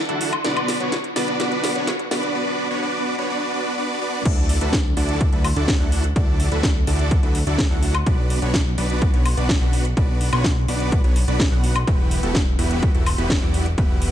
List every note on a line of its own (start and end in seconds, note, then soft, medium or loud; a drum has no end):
0.09 0.32 D4 medium
0.09 0.32 E4 medium
0.09 0.32 F#4 medium
0.09 0.32 A4 medium
0.09 0.32 F#5 medium
0.09 closed hi-hat soft
0.21 open hi-hat loud
0.33 closed hi-hat soft
0.33 high woodblock medium
0.44 0.77 B3 medium
0.44 0.77 D4 medium
0.44 0.77 F#4 medium
0.44 0.77 B4 medium
0.44 0.77 D5 medium
0.44 snare medium
0.44 closed hi-hat medium
0.57 closed hi-hat soft
0.57 high woodblock medium
0.68 snare medium
0.68 open hi-hat loud
0.80 0.95 B3 medium
0.80 0.95 D4 medium
0.80 0.95 F#4 medium
0.80 0.95 B4 medium
0.80 0.95 C#5 medium
0.80 closed hi-hat soft
0.92 snare medium
0.92 closed hi-hat medium
1.04 closed hi-hat soft
1.16 1.38 B3 medium
1.16 1.38 D4 medium
1.16 1.38 F#4 medium
1.16 1.38 B4 medium
1.16 1.38 D5 loud
1.16 snare medium
1.16 open hi-hat loud
1.28 closed hi-hat soft
1.40 1.73 B3 medium
1.40 1.73 D4 medium
1.40 1.73 F#4 medium
1.40 1.73 B4 medium
1.40 1.73 D5 medium
1.40 snare medium
1.40 closed hi-hat medium
1.52 closed hi-hat soft
1.64 snare medium
1.64 open hi-hat loud
1.75 1.90 B3 medium
1.75 1.90 D4 medium
1.75 1.90 F#4 medium
1.75 1.90 B4 medium
1.75 1.90 C#5 medium
1.75 closed hi-hat soft
1.87 snare medium
1.87 closed hi-hat medium
1.99 closed hi-hat soft
2.11 2.33 B3 medium
2.11 2.33 D4 medium
2.11 2.33 F#4 medium
2.11 2.33 B4 medium
2.11 2.33 D5 loud
2.11 snare medium
2.11 open hi-hat loud
2.23 closed hi-hat soft
2.35 2.68 B3 medium
2.35 2.68 D4 medium
2.35 2.68 F#4 medium
2.35 2.68 B4 medium
2.35 2.68 D5 medium
2.71 2.81 B3 medium
2.71 2.81 D4 medium
2.71 2.81 F#4 medium
2.71 2.81 B4 medium
2.71 2.81 C#5 medium
2.83 3.15 B3 medium
2.83 3.15 D4 medium
2.83 3.15 F#4 medium
2.83 3.15 B4 medium
2.83 3.15 D5 medium
3.18 3.28 B3 medium
3.18 3.28 D4 medium
3.18 3.28 F#4 medium
3.18 3.28 B4 medium
3.18 3.28 C#5 medium
3.30 3.52 B3 medium
3.30 3.52 D4 medium
3.30 3.52 F#4 medium
3.30 3.52 B4 medium
3.30 3.52 D5 medium
3.54 3.76 B3 medium
3.54 3.76 D4 medium
3.54 3.76 F#4 medium
3.54 3.76 B4 medium
3.54 3.76 D5 medium
3.78 4.00 B3 medium
3.78 4.00 D4 medium
3.78 4.00 F#4 medium
3.78 4.00 B4 medium
3.78 4.00 D5 medium
4.01 4.24 B3 medium
4.01 4.24 D4 medium
4.01 4.24 F#4 medium
4.01 4.24 B4 medium
4.01 4.24 D5 loud
4.25 4.59 D2 loud
4.25 4.58 D4 medium
4.25 4.58 E4 medium
4.25 4.58 F#4 medium
4.25 4.58 A4 medium
4.25 4.58 D5 medium
4.25 kick loud
4.25 closed hi-hat medium
4.25 crash loud
4.49 open hi-hat loud
4.61 4.95 D2 loud
4.61 4.76 D4 medium
4.61 4.76 E4 medium
4.61 4.76 F#4 medium
4.61 4.76 A4 medium
4.61 4.76 B4 medium
4.61 closed hi-hat medium
4.73 kick loud
4.73 snare loud
4.73 closed hi-hat medium
4.97 5.30 D2 medium
4.97 5.30 D4 medium
4.97 5.30 E4 medium
4.97 5.30 F#4 medium
4.97 5.30 A4 medium
4.97 5.30 D5 loud
4.97 open hi-hat loud
5.09 closed hi-hat medium
5.21 kick loud
5.21 closed hi-hat medium
5.33 5.54 D2 medium
5.33 5.47 D4 loud
5.33 5.47 E4 medium
5.33 5.47 F#4 medium
5.33 5.47 A4 medium
5.33 5.47 B4 loud
5.33 closed hi-hat soft
5.44 open hi-hat loud
5.44 high woodblock medium
5.56 5.78 D2 loud
5.56 5.71 D4 medium
5.56 5.71 E4 medium
5.56 5.71 F#4 medium
5.56 5.71 A4 medium
5.56 5.71 D5 medium
5.56 closed hi-hat medium
5.68 kick loud
5.68 snare loud
5.68 closed hi-hat medium
5.80 6.14 D2 loud
5.80 6.04 D4 medium
5.80 6.04 E4 medium
5.80 6.04 F#4 medium
5.80 6.04 A4 medium
5.80 6.04 F#5 medium
5.92 open hi-hat loud
6.04 closed hi-hat medium
6.16 6.49 D2 medium
6.16 6.49 D4 medium
6.16 6.49 E4 medium
6.16 6.49 F#4 medium
6.16 6.49 A4 medium
6.16 6.49 D5 medium
6.16 kick loud
6.16 closed hi-hat medium
6.40 open hi-hat loud
6.52 6.85 D2 loud
6.52 6.66 D4 medium
6.52 6.66 E4 medium
6.52 6.66 F#4 medium
6.52 6.66 A4 medium
6.52 6.66 B4 medium
6.52 closed hi-hat medium
6.63 kick loud
6.63 snare loud
6.63 closed hi-hat medium
6.87 7.21 D2 medium
6.87 7.20 D4 loud
6.87 7.20 E4 medium
6.87 7.20 F#4 medium
6.87 7.20 A4 medium
6.87 7.20 D5 loud
6.87 open hi-hat loud
6.99 closed hi-hat medium
7.11 kick loud
7.11 closed hi-hat medium
7.23 7.44 D2 medium
7.23 7.38 D4 loud
7.23 7.38 E4 medium
7.23 7.38 F#4 medium
7.23 7.38 A4 medium
7.23 7.38 B4 loud
7.23 closed hi-hat soft
7.35 open hi-hat loud
7.47 7.68 D2 medium
7.47 7.62 D4 medium
7.47 7.62 E4 medium
7.47 7.62 F#4 medium
7.47 7.62 A4 medium
7.47 7.62 D5 medium
7.47 closed hi-hat medium
7.58 kick loud
7.58 snare loud
7.58 closed hi-hat medium
7.71 8.04 D2 loud
7.71 7.94 D4 medium
7.71 7.94 E4 medium
7.71 7.94 F#4 medium
7.71 7.94 A4 medium
7.71 7.94 F#5 medium
7.83 open hi-hat loud
7.95 closed hi-hat medium
7.95 high woodblock medium
8.06 8.40 B1 loud
8.06 8.39 B3 medium
8.06 8.39 D4 medium
8.06 8.39 F#4 medium
8.06 8.39 B4 medium
8.06 8.39 D5 medium
8.06 kick loud
8.06 closed hi-hat medium
8.30 open hi-hat loud
8.42 8.75 B1 loud
8.42 8.57 B3 medium
8.42 8.57 D4 medium
8.42 8.57 F#4 medium
8.42 8.57 B4 medium
8.42 8.57 C#5 medium
8.42 closed hi-hat medium
8.54 kick loud
8.54 snare loud
8.54 closed hi-hat medium
8.78 9.11 B1 medium
8.78 9.11 B3 medium
8.78 9.11 D4 medium
8.78 9.11 F#4 medium
8.78 9.11 B4 medium
8.78 9.11 D5 loud
8.78 open hi-hat loud
8.90 closed hi-hat medium
9.02 kick loud
9.02 closed hi-hat medium
9.14 9.35 B1 medium
9.14 9.28 B3 loud
9.14 9.28 D4 medium
9.14 9.28 F#4 medium
9.14 9.28 B4 medium
9.14 9.28 C#5 loud
9.14 closed hi-hat soft
9.26 open hi-hat loud
9.26 high woodblock medium
9.37 9.59 B1 loud
9.37 9.52 B3 medium
9.37 9.52 D4 medium
9.37 9.52 F#4 medium
9.37 9.52 B4 medium
9.37 9.52 D5 medium
9.37 closed hi-hat medium
9.49 kick loud
9.49 snare loud
9.49 closed hi-hat medium
9.61 9.95 B1 medium
9.61 9.85 B3 medium
9.61 9.85 D4 medium
9.61 9.85 F#4 medium
9.61 9.85 B4 medium
9.61 9.85 F#5 medium
9.73 open hi-hat loud
9.85 closed hi-hat medium
9.97 10.30 B1 medium
9.97 10.30 B3 medium
9.97 10.30 D4 medium
9.97 10.30 F#4 medium
9.97 10.30 B4 medium
9.97 10.30 D5 medium
9.97 kick loud
9.97 closed hi-hat medium
10.21 open hi-hat loud
10.33 10.66 B1 loud
10.33 10.47 B3 medium
10.33 10.47 D4 medium
10.33 10.47 F#4 medium
10.33 10.47 B4 medium
10.33 10.47 C#5 medium
10.33 closed hi-hat medium
10.33 high woodblock medium
10.44 kick loud
10.44 snare loud
10.44 closed hi-hat medium
10.68 11.02 B1 medium
10.68 11.01 B3 loud
10.68 11.01 D4 medium
10.68 11.01 F#4 medium
10.68 11.01 B4 medium
10.68 11.01 D5 loud
10.68 open hi-hat loud
10.80 closed hi-hat medium
10.92 kick loud
10.92 closed hi-hat medium
11.04 11.25 B1 medium
11.04 11.19 B3 loud
11.04 11.19 D4 medium
11.04 11.19 F#4 medium
11.04 11.19 B4 medium
11.04 11.19 C#5 loud
11.04 closed hi-hat soft
11.16 open hi-hat loud
11.28 11.49 B1 medium
11.28 11.43 B3 medium
11.28 11.43 D4 medium
11.28 11.43 F#4 medium
11.28 11.43 B4 medium
11.28 11.43 D5 medium
11.28 closed hi-hat medium
11.40 kick loud
11.40 snare loud
11.40 closed hi-hat medium
11.52 11.85 B1 medium
11.52 11.75 B3 medium
11.52 11.75 D4 medium
11.52 11.75 F#4 medium
11.52 11.75 B4 medium
11.52 11.75 F#5 medium
11.64 open hi-hat loud
11.76 closed hi-hat medium
11.76 high woodblock medium
11.87 12.21 E1 medium
11.87 12.20 B3 medium
11.87 12.20 E4 medium
11.87 12.20 F#4 medium
11.87 12.20 G4 medium
11.87 12.20 B4 medium
11.87 kick loud
11.87 closed hi-hat medium
12.11 open hi-hat loud
12.23 12.56 E1 loud
12.23 12.38 B3 medium
12.23 12.38 E4 medium
12.23 12.38 F#4 medium
12.23 12.38 G4 medium
12.23 12.38 A4 medium
12.23 closed hi-hat medium
12.35 kick loud
12.35 snare loud
12.35 closed hi-hat medium
12.59 12.92 E1 medium
12.59 12.92 B3 loud
12.59 12.92 E4 medium
12.59 12.92 F#4 medium
12.59 12.92 G4 medium
12.59 12.92 B4 loud
12.59 open hi-hat loud
12.71 closed hi-hat medium
12.83 kick loud
12.83 closed hi-hat medium
12.94 13.16 E1 medium
12.94 13.09 B3 loud
12.94 13.09 E4 medium
12.94 13.09 F#4 medium
12.94 13.09 G4 medium
12.94 13.09 A4 loud
12.94 closed hi-hat soft
13.06 open hi-hat loud
13.06 high woodblock medium
13.18 13.40 E1 loud
13.18 13.33 B3 medium
13.18 13.33 E4 medium
13.18 13.33 F#4 medium
13.18 13.33 G4 medium
13.18 13.33 B4 medium
13.18 closed hi-hat medium
13.30 kick loud
13.30 snare loud
13.30 closed hi-hat medium
13.42 13.76 E1 medium
13.42 13.66 B3 medium
13.42 13.66 E4 medium
13.42 13.66 F#4 medium
13.42 13.66 G4 medium
13.42 13.66 D5 medium
13.54 open hi-hat loud
13.66 closed hi-hat medium
13.78 14.11 E1 loud
13.78 14.11 B3 medium
13.78 14.11 E4 medium
13.78 14.11 F#4 medium
13.78 14.11 G4 medium
13.78 14.11 B4 medium
13.78 kick loud
13.78 closed hi-hat medium
14.02 open hi-hat loud